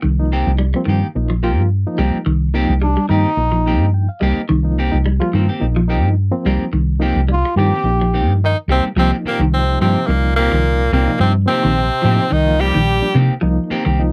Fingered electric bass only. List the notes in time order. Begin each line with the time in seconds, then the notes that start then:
0.04 C2
0.47 C2
0.87 G2
1.16 A#1
1.58 G2
1.99 C2
2.14 muted fingered electric bass stroke
2.27 C2
2.70 C2
3.10 G2
3.37 A#1
3.81 G2
4.22 C2
4.37 muted fingered electric bass stroke
4.50 C2
4.93 C2
5.34 G2
5.62 A#1
6.04 G2
6.46 C2
6.62 muted fingered electric bass stroke
6.73 C2
7.16 C2
7.56 G2
7.84 A#1
8.28 G2
8.68 C2
8.96 C2
9.25 muted fingered electric bass stroke
9.39 C2
9.81 G2
10.08 C2
10.53 C2
10.92 C2
11.20 G2
11.65 A#1
12.05 A2
12.32 C2
12.75 A#1
13.15 C3
13.31 muted fingered electric bass stroke
13.43 C2
13.71 muted fingered electric bass stroke
13.86 C2